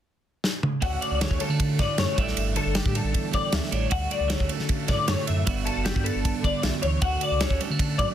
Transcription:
0.44 snare
0.63 mid tom
0.82 clean electric guitar D2 D3 A3 C#4 F#4 F#5, sub bass D2, kick, ride
1.01 clean electric guitar D5, ride
1.11 sub bass C#2
1.21 clean electric guitar D3 C#4 C#5, snare, ride
1.31 sub bass D2, kick
1.40 clean electric guitar G3 A4, ride
1.49 sub bass D3, clean electric guitar A3
1.60 kick, ride
1.79 sub bass F#2, clean electric guitar A2 C#4 D5, kick, snare, ride
1.98 sub bass F#2, clean electric guitar A3 C#5, snare, ride
2.15 sub bass A1, clean electric guitar A2 D3 G3 A3 D4 E5, kick, ride
2.28 snare
2.37 sub bass G1, ride
2.55 clean electric guitar D3 A3 A4, ride
2.66 sub bass G1
2.75 clean electric guitar G3 G4, snare, ride
2.86 sub bass A2, kick
2.95 clean electric guitar A4, ride
3.04 sub bass A1
3.12 clean electric guitar E2 A3, kick, ride
3.32 sub bass A1, clean electric guitar G3 D5, kick, ride
3.52 sub bass D2, clean electric guitar E5, snare, ride
3.63 snare
3.71 sub bass A1, clean electric guitar A2 D4 C#5, ride
3.89 clean electric guitar D2 F#4 F#5, sub bass D2, kick, ride
4.11 clean electric guitar D5, ride
4.20 sub bass C#2
4.28 clean electric guitar D3 C#4 C#5, snare, ride
4.40 sub bass D2, kick
4.48 clean electric guitar A3 A4, ride
4.59 sub bass D3, snare
4.69 kick, ride
4.87 sub bass F#2, clean electric guitar A2 C#4 D5, kick, snare, ride
5.08 sub bass F#2, clean electric guitar A3 C#5, snare, ride
5.27 sub bass F#2, clean electric guitar E5, ride
5.45 sub bass G1, clean electric guitar G2 D3 B3 D4, kick, ride
5.49 clean electric guitar F#4
5.65 clean electric guitar A4, ride
5.77 sub bass F#1
5.84 clean electric guitar D3 D4 G4, snare, ride
5.96 sub bass G2, kick
6.04 clean electric guitar B3 A4, ride
6.15 sub bass G1
6.25 kick, ride
6.43 sub bass G1, clean electric guitar D3 D4 D5, kick, ride
6.63 sub bass B1, clean electric guitar F#2 E5, snare, ride
6.82 sub bass D2, clean electric guitar E2 C#5, ride
7.02 clean electric guitar D2 F#4 F#5, sub bass D2, kick, ride
7.21 clean electric guitar D5, ride
7.31 sub bass C#2
7.40 clean electric guitar D3 C#4 C#5, snare, ride
7.50 sub bass D2, kick
7.60 clean electric guitar G3 A4, ride
7.70 sub bass D3, clean electric guitar A3
7.79 kick, ride
7.98 sub bass F#2, clean electric guitar F#2 D5, kick, ride

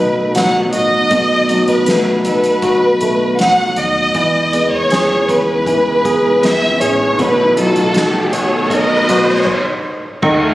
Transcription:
Already playing: fingered electric bass B1, upright piano B2 F#3 D#4 F#4 A4, steel-string acoustic guitar B2 B3 D#4 A4, tonewheel organ D#3 F#3 A3 B3 F#4, violin section B4
0.35 upright piano F#3, steel-string acoustic guitar B3, violin section F#5, snare, closed hi-hat
0.72 fingered electric bass A1, upright piano F#4, violin section D#5, closed hi-hat
1.11 fingered electric bass B1, steel-string acoustic guitar B2 A4, upright piano B2, tonewheel organ F#3, kick, closed hi-hat
1.49 upright piano F#3, steel-string acoustic guitar D#4, closed hi-hat
1.68 fingered electric bass B1, violin section B4, closed hi-hat
1.86 upright piano A3, steel-string acoustic guitar B3, snare, closed hi-hat
2.25 fingered electric bass B1, upright piano D#4, steel-string acoustic guitar A4, violin section B4, closed hi-hat
2.44 closed hi-hat
2.62 steel-string acoustic guitar D#4, upright piano F#4, kick, closed hi-hat
3.01 fingered electric bass B1, upright piano A3, closed hi-hat
3.39 upright piano F#3, steel-string acoustic guitar B3, violin section F#5, snare, closed hi-hat
3.76 fingered electric bass D#2, upright piano D#4, violin section D#5, closed hi-hat
4.13 fingered electric bass E2, tonewheel organ C#3 E3 G#3 E4, steel-string acoustic guitar E3 B4, upright piano E3, kick, closed hi-hat, riser
4.53 upright piano B3, steel-string acoustic guitar G#4, closed hi-hat
4.72 fingered electric bass E2, violin section C#5
4.91 steel-string acoustic guitar C#4, upright piano G#4, snare, closed hi-hat
5.28 fingered electric bass E2, upright piano B3, steel-string acoustic guitar B4, violin section B4, kick, closed hi-hat
5.66 upright piano E3, steel-string acoustic guitar G#4, kick, closed hi-hat
6.05 fingered electric bass E2, upright piano G#4, kick, closed hi-hat
6.42 upright piano B3, steel-string acoustic guitar C#4, violin section E5, snare, closed hi-hat
6.81 fingered electric bass A1, upright piano G#4, violin section C#5, closed hi-hat
7.19 fingered electric bass B1, upright piano B2, steel-string acoustic guitar B2 A4, tonewheel organ D#3 F#3 A3 B3 F#4, violin section B4, kick, closed hi-hat
7.57 upright piano F#3, steel-string acoustic guitar D#4, violin section A4, closed hi-hat
7.76 fingered electric bass B1, closed hi-hat
7.94 steel-string acoustic guitar B3, upright piano D#4, snare, closed hi-hat
8.33 fingered electric bass B1, upright piano F#4, steel-string acoustic guitar A4, violin section C#5, closed hi-hat
8.70 steel-string acoustic guitar D#4, upright piano D#4, violin section D#5, kick, closed hi-hat
9.09 fingered electric bass B1, upright piano F#4, closed hi-hat
9.47 kick, crash
10.22 fingered electric bass D#2, steel-string acoustic guitar D#3, upright piano D#3, tonewheel organ A4 D#5 F#5 C#6, kick, crash
10.43 upright piano A3

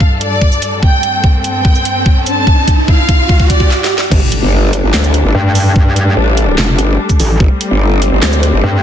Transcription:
Already playing: string section G2 G3 D4 A4, violin section F5, riser
0.00 kick
0.21 violin section D5, closed hi-hat
0.42 kick
0.52 shaker
0.62 closed hi-hat, shaker
0.83 string section C4, violin section G5, kick
1.03 closed hi-hat
1.24 kick
1.44 violin section G5, closed hi-hat
1.65 kick
1.75 shaker
1.85 closed hi-hat
2.06 kick
2.26 violin section A5, closed hi-hat, shaker
2.47 kick
2.68 kick, closed hi-hat
2.88 violin section F5, kick
3.09 kick, closed hi-hat
3.29 kick
3.40 kick
3.50 violin section D5, kick, closed hi-hat
3.60 kick
3.70 snare
3.84 snare
3.98 snare
4.11 wobble bass G1, string section G3 A3 D4, kick, crash, impact
4.32 closed hi-hat
4.42 wobble bass G1
4.73 closed hi-hat
4.83 wobble bass G1
4.94 wobble bass D2, snare, clap
5.04 shaker
5.14 closed hi-hat
5.25 wobble bass G1
5.35 wobble bass G2
5.55 open hi-hat, shaker
5.76 kick
5.96 closed hi-hat
6.17 wobble bass A1
6.37 closed hi-hat
6.58 wobble bass F1, snare, clap
6.79 wobble bass G1, closed hi-hat
7.09 kick, shaker
7.20 wobble bass A1, open hi-hat, shaker
7.40 wobble bass G1, string section C4, kick
7.61 closed hi-hat
7.71 wobble bass G1
8.02 closed hi-hat
8.12 wobble bass G1
8.22 wobble bass D2, snare, clap
8.33 shaker
8.43 closed hi-hat
8.53 wobble bass G1
8.64 wobble bass G2

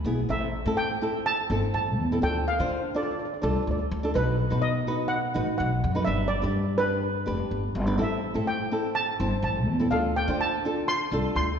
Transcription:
0.05 upright bass B1, nylon-string guitar B3 E4 G#4
0.29 upright bass A1, nylon-string guitar C4 E4 A4, steel pan E5
0.66 upright bass A2, nylon-string guitar C4 E4 A4
0.77 steel pan G5
1.01 nylon-string guitar C4 E4 A4
1.26 steel pan A5
1.50 upright bass G1, nylon-string guitar C4 E4 A4
1.74 upright bass A1, steel pan A5
1.98 upright bass E2
2.12 nylon-string guitar C4 E4 A4
2.22 upright bass D2, nylon-string guitar D4 F4 A4, steel pan G5
2.48 steel pan F5
2.59 upright bass D3, nylon-string guitar D4 F4 C5
2.95 nylon-string guitar D4 F4 A4, steel pan D5
3.03 steel pan D5
3.11 steel pan D5
3.19 steel pan D5
3.25 steel pan D5
3.34 steel pan D5
3.42 upright bass C2, nylon-string guitar D4 F4 A4, steel pan D5
3.48 steel pan D5
3.56 steel pan D5
3.63 steel pan D5
3.67 upright bass D2, steel pan D5
3.79 steel pan D5
3.91 upright bass D2
4.03 nylon-string guitar D4 F4 A4
4.14 upright bass B1, nylon-string guitar D#4 F#4 B4, steel pan B4
4.50 upright bass B2, nylon-string guitar D#4 F#4 B4
4.62 steel pan D#5
4.87 nylon-string guitar D#4 F#4 B4
5.08 steel pan F#5
5.34 upright bass A1, nylon-string guitar D#4 F#4 B4
5.58 upright bass B1, steel pan F#5
5.84 upright bass F#2
5.95 nylon-string guitar D#4 F#4 B4
6.05 upright bass G1, nylon-string guitar D4 G4 B4, steel pan E5
6.28 steel pan D5
6.42 upright bass G2, nylon-string guitar D4 G4 B4
6.78 nylon-string guitar D4 G4 B4, steel pan B4
7.26 upright bass F1, nylon-string guitar D4 G4 B4
7.51 upright bass G1
7.75 upright bass G1
7.87 nylon-string guitar D4 G4 B4
7.98 upright bass A1, nylon-string guitar C4 E4 A4
8.02 steel pan E5
8.34 upright bass A2, nylon-string guitar C4 E4 A4
8.47 steel pan G5
8.71 nylon-string guitar C4 E4 A4
8.95 steel pan A5
9.20 upright bass G1, nylon-string guitar C4 E4 C5
9.42 upright bass A1, steel pan A5
9.67 upright bass E2
9.79 nylon-string guitar C4 E4 A4
9.91 upright bass D2, nylon-string guitar D4 F4 A4, steel pan F5
10.16 steel pan G5
10.28 upright bass D3, nylon-string guitar D4 F4 C5
10.41 steel pan A5
10.65 nylon-string guitar D4 F4 A4
10.88 steel pan C6
11.12 upright bass C2, nylon-string guitar D4 F4 A4
11.36 upright bass D2, steel pan C6

